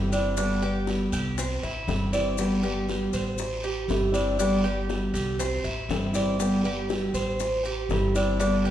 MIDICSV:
0, 0, Header, 1, 6, 480
1, 0, Start_track
1, 0, Key_signature, 1, "major"
1, 0, Tempo, 501672
1, 360, Time_signature, 4, 2, 24, 8
1, 8330, End_track
2, 0, Start_track
2, 0, Title_t, "Cuban tres"
2, 0, Program_c, 0, 25
2, 0, Note_on_c, 0, 67, 72
2, 105, Note_off_c, 0, 67, 0
2, 120, Note_on_c, 0, 62, 71
2, 344, Note_off_c, 0, 62, 0
2, 356, Note_on_c, 0, 62, 90
2, 591, Note_off_c, 0, 62, 0
2, 597, Note_on_c, 0, 67, 80
2, 1064, Note_off_c, 0, 67, 0
2, 1081, Note_on_c, 0, 67, 72
2, 1314, Note_off_c, 0, 67, 0
2, 1329, Note_on_c, 0, 60, 85
2, 1557, Note_off_c, 0, 60, 0
2, 1562, Note_on_c, 0, 64, 79
2, 2027, Note_off_c, 0, 64, 0
2, 2039, Note_on_c, 0, 74, 74
2, 2505, Note_off_c, 0, 74, 0
2, 2519, Note_on_c, 0, 67, 74
2, 2986, Note_off_c, 0, 67, 0
2, 3000, Note_on_c, 0, 72, 70
2, 3466, Note_off_c, 0, 72, 0
2, 3482, Note_on_c, 0, 67, 77
2, 3947, Note_off_c, 0, 67, 0
2, 3961, Note_on_c, 0, 62, 74
2, 4190, Note_off_c, 0, 62, 0
2, 4202, Note_on_c, 0, 62, 92
2, 4434, Note_off_c, 0, 62, 0
2, 4438, Note_on_c, 0, 67, 75
2, 4905, Note_off_c, 0, 67, 0
2, 4916, Note_on_c, 0, 67, 65
2, 5151, Note_off_c, 0, 67, 0
2, 5160, Note_on_c, 0, 60, 81
2, 5393, Note_off_c, 0, 60, 0
2, 5398, Note_on_c, 0, 64, 80
2, 5865, Note_off_c, 0, 64, 0
2, 5885, Note_on_c, 0, 74, 76
2, 6348, Note_off_c, 0, 74, 0
2, 6365, Note_on_c, 0, 67, 75
2, 6828, Note_off_c, 0, 67, 0
2, 6835, Note_on_c, 0, 72, 69
2, 7303, Note_off_c, 0, 72, 0
2, 7324, Note_on_c, 0, 67, 79
2, 7787, Note_off_c, 0, 67, 0
2, 7804, Note_on_c, 0, 62, 77
2, 8022, Note_off_c, 0, 62, 0
2, 8034, Note_on_c, 0, 62, 92
2, 8269, Note_off_c, 0, 62, 0
2, 8277, Note_on_c, 0, 67, 76
2, 8330, Note_off_c, 0, 67, 0
2, 8330, End_track
3, 0, Start_track
3, 0, Title_t, "Steel-string acoustic guitar"
3, 0, Program_c, 1, 25
3, 0, Note_on_c, 1, 52, 54
3, 0, Note_on_c, 1, 55, 64
3, 0, Note_on_c, 1, 60, 62
3, 0, Note_on_c, 1, 64, 56
3, 104, Note_off_c, 1, 52, 0
3, 106, Note_off_c, 1, 64, 0
3, 110, Note_off_c, 1, 55, 0
3, 112, Note_off_c, 1, 60, 0
3, 117, Note_on_c, 1, 64, 66
3, 131, Note_on_c, 1, 60, 59
3, 139, Note_on_c, 1, 55, 59
3, 349, Note_off_c, 1, 64, 0
3, 351, Note_off_c, 1, 55, 0
3, 355, Note_on_c, 1, 50, 74
3, 356, Note_off_c, 1, 60, 0
3, 362, Note_on_c, 1, 55, 75
3, 366, Note_on_c, 1, 59, 71
3, 374, Note_on_c, 1, 67, 81
3, 584, Note_off_c, 1, 67, 0
3, 588, Note_off_c, 1, 50, 0
3, 592, Note_off_c, 1, 55, 0
3, 594, Note_off_c, 1, 59, 0
3, 596, Note_on_c, 1, 67, 65
3, 608, Note_on_c, 1, 59, 56
3, 618, Note_on_c, 1, 55, 48
3, 828, Note_off_c, 1, 67, 0
3, 833, Note_off_c, 1, 55, 0
3, 835, Note_off_c, 1, 59, 0
3, 839, Note_on_c, 1, 50, 47
3, 845, Note_on_c, 1, 55, 49
3, 852, Note_on_c, 1, 59, 50
3, 858, Note_on_c, 1, 67, 54
3, 1310, Note_off_c, 1, 50, 0
3, 1310, Note_off_c, 1, 55, 0
3, 1317, Note_off_c, 1, 59, 0
3, 1320, Note_off_c, 1, 67, 0
3, 1790, Note_on_c, 1, 52, 58
3, 1796, Note_on_c, 1, 55, 50
3, 1803, Note_on_c, 1, 60, 55
3, 1808, Note_on_c, 1, 64, 53
3, 2022, Note_off_c, 1, 64, 0
3, 2026, Note_off_c, 1, 52, 0
3, 2029, Note_off_c, 1, 55, 0
3, 2032, Note_off_c, 1, 60, 0
3, 2034, Note_on_c, 1, 64, 67
3, 2043, Note_on_c, 1, 60, 66
3, 2046, Note_on_c, 1, 55, 67
3, 2057, Note_on_c, 1, 52, 62
3, 2268, Note_off_c, 1, 64, 0
3, 2270, Note_off_c, 1, 52, 0
3, 2272, Note_off_c, 1, 60, 0
3, 2274, Note_off_c, 1, 55, 0
3, 2274, Note_on_c, 1, 50, 66
3, 2284, Note_on_c, 1, 55, 84
3, 2289, Note_on_c, 1, 59, 78
3, 2293, Note_on_c, 1, 67, 83
3, 2503, Note_off_c, 1, 67, 0
3, 2508, Note_off_c, 1, 50, 0
3, 2513, Note_off_c, 1, 55, 0
3, 2513, Note_off_c, 1, 59, 0
3, 2514, Note_on_c, 1, 67, 60
3, 2524, Note_on_c, 1, 59, 57
3, 2534, Note_on_c, 1, 55, 53
3, 2747, Note_off_c, 1, 55, 0
3, 2748, Note_off_c, 1, 67, 0
3, 2753, Note_off_c, 1, 59, 0
3, 2754, Note_on_c, 1, 50, 47
3, 2759, Note_on_c, 1, 55, 53
3, 2768, Note_on_c, 1, 59, 55
3, 2771, Note_on_c, 1, 67, 56
3, 3224, Note_off_c, 1, 55, 0
3, 3228, Note_off_c, 1, 50, 0
3, 3234, Note_off_c, 1, 59, 0
3, 3235, Note_off_c, 1, 67, 0
3, 3704, Note_on_c, 1, 52, 54
3, 3712, Note_on_c, 1, 55, 49
3, 3717, Note_on_c, 1, 60, 52
3, 3726, Note_on_c, 1, 64, 65
3, 3933, Note_off_c, 1, 64, 0
3, 3942, Note_off_c, 1, 60, 0
3, 3943, Note_off_c, 1, 52, 0
3, 3945, Note_on_c, 1, 64, 71
3, 3947, Note_off_c, 1, 55, 0
3, 3953, Note_on_c, 1, 60, 69
3, 3966, Note_on_c, 1, 55, 57
3, 4183, Note_off_c, 1, 64, 0
3, 4187, Note_off_c, 1, 60, 0
3, 4191, Note_off_c, 1, 55, 0
3, 4193, Note_on_c, 1, 50, 72
3, 4202, Note_on_c, 1, 55, 86
3, 4207, Note_on_c, 1, 59, 78
3, 4215, Note_on_c, 1, 67, 83
3, 4424, Note_off_c, 1, 67, 0
3, 4427, Note_off_c, 1, 50, 0
3, 4432, Note_off_c, 1, 55, 0
3, 4434, Note_off_c, 1, 59, 0
3, 4436, Note_on_c, 1, 67, 62
3, 4448, Note_on_c, 1, 59, 47
3, 4456, Note_on_c, 1, 55, 45
3, 4669, Note_off_c, 1, 67, 0
3, 4670, Note_off_c, 1, 55, 0
3, 4674, Note_on_c, 1, 50, 41
3, 4675, Note_off_c, 1, 59, 0
3, 4681, Note_on_c, 1, 55, 47
3, 4690, Note_on_c, 1, 59, 55
3, 4693, Note_on_c, 1, 67, 46
3, 5148, Note_off_c, 1, 50, 0
3, 5151, Note_off_c, 1, 55, 0
3, 5156, Note_off_c, 1, 59, 0
3, 5157, Note_off_c, 1, 67, 0
3, 5635, Note_on_c, 1, 52, 60
3, 5645, Note_on_c, 1, 55, 53
3, 5652, Note_on_c, 1, 60, 63
3, 5654, Note_on_c, 1, 64, 56
3, 5857, Note_off_c, 1, 64, 0
3, 5867, Note_off_c, 1, 60, 0
3, 5868, Note_off_c, 1, 52, 0
3, 5869, Note_on_c, 1, 64, 78
3, 5873, Note_off_c, 1, 55, 0
3, 5879, Note_on_c, 1, 60, 69
3, 5886, Note_on_c, 1, 55, 59
3, 5894, Note_on_c, 1, 52, 58
3, 6105, Note_off_c, 1, 52, 0
3, 6105, Note_off_c, 1, 64, 0
3, 6106, Note_off_c, 1, 55, 0
3, 6109, Note_on_c, 1, 50, 73
3, 6110, Note_off_c, 1, 60, 0
3, 6117, Note_on_c, 1, 55, 83
3, 6122, Note_on_c, 1, 59, 77
3, 6131, Note_on_c, 1, 67, 83
3, 6337, Note_off_c, 1, 67, 0
3, 6345, Note_off_c, 1, 50, 0
3, 6348, Note_on_c, 1, 67, 64
3, 6349, Note_off_c, 1, 55, 0
3, 6352, Note_off_c, 1, 59, 0
3, 6362, Note_on_c, 1, 59, 62
3, 6367, Note_on_c, 1, 55, 48
3, 6585, Note_off_c, 1, 55, 0
3, 6585, Note_off_c, 1, 67, 0
3, 6589, Note_on_c, 1, 50, 48
3, 6591, Note_off_c, 1, 59, 0
3, 6597, Note_on_c, 1, 55, 51
3, 6604, Note_on_c, 1, 59, 46
3, 6609, Note_on_c, 1, 67, 64
3, 7065, Note_off_c, 1, 50, 0
3, 7069, Note_off_c, 1, 55, 0
3, 7072, Note_off_c, 1, 59, 0
3, 7075, Note_off_c, 1, 67, 0
3, 7557, Note_on_c, 1, 52, 53
3, 7567, Note_on_c, 1, 55, 56
3, 7574, Note_on_c, 1, 60, 64
3, 7579, Note_on_c, 1, 64, 66
3, 7786, Note_off_c, 1, 64, 0
3, 7788, Note_off_c, 1, 52, 0
3, 7794, Note_off_c, 1, 55, 0
3, 7797, Note_off_c, 1, 60, 0
3, 7797, Note_on_c, 1, 64, 73
3, 7812, Note_on_c, 1, 60, 63
3, 7819, Note_on_c, 1, 55, 60
3, 8027, Note_on_c, 1, 50, 76
3, 8029, Note_off_c, 1, 55, 0
3, 8029, Note_off_c, 1, 64, 0
3, 8036, Note_off_c, 1, 60, 0
3, 8041, Note_on_c, 1, 55, 82
3, 8044, Note_on_c, 1, 59, 73
3, 8050, Note_on_c, 1, 67, 73
3, 8261, Note_off_c, 1, 67, 0
3, 8264, Note_off_c, 1, 50, 0
3, 8270, Note_off_c, 1, 55, 0
3, 8272, Note_off_c, 1, 59, 0
3, 8272, Note_on_c, 1, 67, 60
3, 8283, Note_on_c, 1, 59, 55
3, 8293, Note_on_c, 1, 55, 50
3, 8330, Note_off_c, 1, 55, 0
3, 8330, Note_off_c, 1, 59, 0
3, 8330, Note_off_c, 1, 67, 0
3, 8330, End_track
4, 0, Start_track
4, 0, Title_t, "Upright bass"
4, 0, Program_c, 2, 32
4, 0, Note_on_c, 2, 31, 90
4, 1017, Note_off_c, 2, 31, 0
4, 1075, Note_on_c, 2, 36, 89
4, 1524, Note_off_c, 2, 36, 0
4, 1558, Note_on_c, 2, 33, 72
4, 1783, Note_off_c, 2, 33, 0
4, 1796, Note_on_c, 2, 31, 87
4, 2936, Note_off_c, 2, 31, 0
4, 2995, Note_on_c, 2, 33, 82
4, 3679, Note_off_c, 2, 33, 0
4, 3716, Note_on_c, 2, 31, 90
4, 4856, Note_off_c, 2, 31, 0
4, 4917, Note_on_c, 2, 36, 87
4, 5365, Note_off_c, 2, 36, 0
4, 5393, Note_on_c, 2, 33, 73
4, 5620, Note_off_c, 2, 33, 0
4, 5634, Note_on_c, 2, 31, 100
4, 6775, Note_off_c, 2, 31, 0
4, 6828, Note_on_c, 2, 33, 86
4, 7515, Note_off_c, 2, 33, 0
4, 7549, Note_on_c, 2, 31, 84
4, 8330, Note_off_c, 2, 31, 0
4, 8330, End_track
5, 0, Start_track
5, 0, Title_t, "Muted steel-string acoustic guitar strokes"
5, 1320, Note_on_c, 9, 29, 66
5, 1415, Note_off_c, 9, 29, 0
5, 3233, Note_on_c, 9, 29, 65
5, 3329, Note_off_c, 9, 29, 0
5, 5158, Note_on_c, 9, 29, 72
5, 5253, Note_off_c, 9, 29, 0
5, 7078, Note_on_c, 9, 29, 65
5, 7173, Note_off_c, 9, 29, 0
5, 8330, End_track
6, 0, Start_track
6, 0, Title_t, "Drums"
6, 120, Note_on_c, 9, 70, 66
6, 124, Note_on_c, 9, 73, 76
6, 126, Note_on_c, 9, 60, 36
6, 216, Note_off_c, 9, 70, 0
6, 220, Note_off_c, 9, 73, 0
6, 222, Note_off_c, 9, 60, 0
6, 354, Note_on_c, 9, 70, 85
6, 360, Note_on_c, 9, 60, 61
6, 364, Note_on_c, 9, 74, 65
6, 450, Note_off_c, 9, 70, 0
6, 455, Note_off_c, 9, 60, 0
6, 459, Note_off_c, 9, 74, 0
6, 597, Note_on_c, 9, 70, 26
6, 693, Note_off_c, 9, 70, 0
6, 835, Note_on_c, 9, 60, 63
6, 838, Note_on_c, 9, 73, 66
6, 842, Note_on_c, 9, 70, 27
6, 931, Note_off_c, 9, 60, 0
6, 934, Note_off_c, 9, 73, 0
6, 938, Note_off_c, 9, 70, 0
6, 1076, Note_on_c, 9, 73, 65
6, 1078, Note_on_c, 9, 70, 60
6, 1172, Note_off_c, 9, 73, 0
6, 1174, Note_off_c, 9, 70, 0
6, 1317, Note_on_c, 9, 74, 64
6, 1319, Note_on_c, 9, 60, 63
6, 1321, Note_on_c, 9, 70, 88
6, 1413, Note_off_c, 9, 74, 0
6, 1415, Note_off_c, 9, 60, 0
6, 1417, Note_off_c, 9, 70, 0
6, 1565, Note_on_c, 9, 70, 29
6, 1567, Note_on_c, 9, 60, 34
6, 1661, Note_off_c, 9, 70, 0
6, 1663, Note_off_c, 9, 60, 0
6, 1800, Note_on_c, 9, 73, 64
6, 1801, Note_on_c, 9, 70, 25
6, 1805, Note_on_c, 9, 60, 37
6, 1805, Note_on_c, 9, 61, 84
6, 1895, Note_off_c, 9, 73, 0
6, 1897, Note_off_c, 9, 70, 0
6, 1900, Note_off_c, 9, 60, 0
6, 1900, Note_off_c, 9, 61, 0
6, 2041, Note_on_c, 9, 70, 75
6, 2042, Note_on_c, 9, 73, 75
6, 2046, Note_on_c, 9, 60, 33
6, 2137, Note_off_c, 9, 70, 0
6, 2137, Note_off_c, 9, 73, 0
6, 2141, Note_off_c, 9, 60, 0
6, 2276, Note_on_c, 9, 70, 95
6, 2282, Note_on_c, 9, 74, 70
6, 2284, Note_on_c, 9, 60, 61
6, 2372, Note_off_c, 9, 70, 0
6, 2378, Note_off_c, 9, 74, 0
6, 2380, Note_off_c, 9, 60, 0
6, 2517, Note_on_c, 9, 70, 26
6, 2613, Note_off_c, 9, 70, 0
6, 2759, Note_on_c, 9, 70, 25
6, 2761, Note_on_c, 9, 73, 70
6, 2768, Note_on_c, 9, 60, 57
6, 2854, Note_off_c, 9, 70, 0
6, 2857, Note_off_c, 9, 73, 0
6, 2864, Note_off_c, 9, 60, 0
6, 2997, Note_on_c, 9, 70, 63
6, 3002, Note_on_c, 9, 73, 59
6, 3093, Note_off_c, 9, 70, 0
6, 3097, Note_off_c, 9, 73, 0
6, 3235, Note_on_c, 9, 70, 75
6, 3239, Note_on_c, 9, 74, 76
6, 3250, Note_on_c, 9, 60, 62
6, 3331, Note_off_c, 9, 70, 0
6, 3335, Note_off_c, 9, 74, 0
6, 3346, Note_off_c, 9, 60, 0
6, 3477, Note_on_c, 9, 70, 33
6, 3491, Note_on_c, 9, 60, 36
6, 3572, Note_off_c, 9, 70, 0
6, 3586, Note_off_c, 9, 60, 0
6, 3720, Note_on_c, 9, 73, 74
6, 3722, Note_on_c, 9, 70, 28
6, 3736, Note_on_c, 9, 60, 33
6, 3736, Note_on_c, 9, 61, 80
6, 3816, Note_off_c, 9, 73, 0
6, 3817, Note_off_c, 9, 70, 0
6, 3832, Note_off_c, 9, 60, 0
6, 3832, Note_off_c, 9, 61, 0
6, 3960, Note_on_c, 9, 73, 75
6, 3965, Note_on_c, 9, 70, 76
6, 3978, Note_on_c, 9, 60, 34
6, 4056, Note_off_c, 9, 73, 0
6, 4060, Note_off_c, 9, 70, 0
6, 4073, Note_off_c, 9, 60, 0
6, 4201, Note_on_c, 9, 74, 68
6, 4205, Note_on_c, 9, 70, 93
6, 4213, Note_on_c, 9, 60, 65
6, 4296, Note_off_c, 9, 74, 0
6, 4300, Note_off_c, 9, 70, 0
6, 4309, Note_off_c, 9, 60, 0
6, 4447, Note_on_c, 9, 70, 30
6, 4543, Note_off_c, 9, 70, 0
6, 4683, Note_on_c, 9, 73, 65
6, 4686, Note_on_c, 9, 60, 65
6, 4686, Note_on_c, 9, 70, 27
6, 4778, Note_off_c, 9, 73, 0
6, 4782, Note_off_c, 9, 60, 0
6, 4782, Note_off_c, 9, 70, 0
6, 4922, Note_on_c, 9, 73, 71
6, 4931, Note_on_c, 9, 70, 63
6, 5018, Note_off_c, 9, 73, 0
6, 5027, Note_off_c, 9, 70, 0
6, 5161, Note_on_c, 9, 74, 67
6, 5164, Note_on_c, 9, 70, 84
6, 5168, Note_on_c, 9, 60, 66
6, 5257, Note_off_c, 9, 74, 0
6, 5260, Note_off_c, 9, 70, 0
6, 5264, Note_off_c, 9, 60, 0
6, 5399, Note_on_c, 9, 70, 34
6, 5408, Note_on_c, 9, 60, 32
6, 5495, Note_off_c, 9, 70, 0
6, 5503, Note_off_c, 9, 60, 0
6, 5642, Note_on_c, 9, 70, 27
6, 5642, Note_on_c, 9, 73, 71
6, 5651, Note_on_c, 9, 60, 40
6, 5651, Note_on_c, 9, 61, 83
6, 5737, Note_off_c, 9, 73, 0
6, 5738, Note_off_c, 9, 70, 0
6, 5747, Note_off_c, 9, 60, 0
6, 5747, Note_off_c, 9, 61, 0
6, 5876, Note_on_c, 9, 70, 75
6, 5880, Note_on_c, 9, 73, 76
6, 5886, Note_on_c, 9, 60, 35
6, 5972, Note_off_c, 9, 70, 0
6, 5976, Note_off_c, 9, 73, 0
6, 5982, Note_off_c, 9, 60, 0
6, 6120, Note_on_c, 9, 74, 72
6, 6122, Note_on_c, 9, 70, 80
6, 6123, Note_on_c, 9, 60, 62
6, 6216, Note_off_c, 9, 74, 0
6, 6218, Note_off_c, 9, 70, 0
6, 6219, Note_off_c, 9, 60, 0
6, 6355, Note_on_c, 9, 70, 28
6, 6451, Note_off_c, 9, 70, 0
6, 6595, Note_on_c, 9, 70, 29
6, 6603, Note_on_c, 9, 60, 67
6, 6604, Note_on_c, 9, 73, 67
6, 6690, Note_off_c, 9, 70, 0
6, 6699, Note_off_c, 9, 60, 0
6, 6700, Note_off_c, 9, 73, 0
6, 6836, Note_on_c, 9, 70, 63
6, 6845, Note_on_c, 9, 73, 66
6, 6932, Note_off_c, 9, 70, 0
6, 6940, Note_off_c, 9, 73, 0
6, 7078, Note_on_c, 9, 70, 74
6, 7085, Note_on_c, 9, 60, 61
6, 7085, Note_on_c, 9, 74, 68
6, 7173, Note_off_c, 9, 70, 0
6, 7181, Note_off_c, 9, 60, 0
6, 7181, Note_off_c, 9, 74, 0
6, 7315, Note_on_c, 9, 70, 30
6, 7322, Note_on_c, 9, 60, 35
6, 7411, Note_off_c, 9, 70, 0
6, 7417, Note_off_c, 9, 60, 0
6, 7554, Note_on_c, 9, 70, 30
6, 7566, Note_on_c, 9, 60, 39
6, 7566, Note_on_c, 9, 61, 86
6, 7566, Note_on_c, 9, 73, 72
6, 7650, Note_off_c, 9, 70, 0
6, 7661, Note_off_c, 9, 60, 0
6, 7661, Note_off_c, 9, 61, 0
6, 7661, Note_off_c, 9, 73, 0
6, 7800, Note_on_c, 9, 60, 33
6, 7800, Note_on_c, 9, 70, 72
6, 7808, Note_on_c, 9, 73, 76
6, 7896, Note_off_c, 9, 60, 0
6, 7896, Note_off_c, 9, 70, 0
6, 7903, Note_off_c, 9, 73, 0
6, 8041, Note_on_c, 9, 60, 67
6, 8041, Note_on_c, 9, 70, 81
6, 8043, Note_on_c, 9, 74, 71
6, 8137, Note_off_c, 9, 60, 0
6, 8137, Note_off_c, 9, 70, 0
6, 8138, Note_off_c, 9, 74, 0
6, 8280, Note_on_c, 9, 70, 26
6, 8330, Note_off_c, 9, 70, 0
6, 8330, End_track
0, 0, End_of_file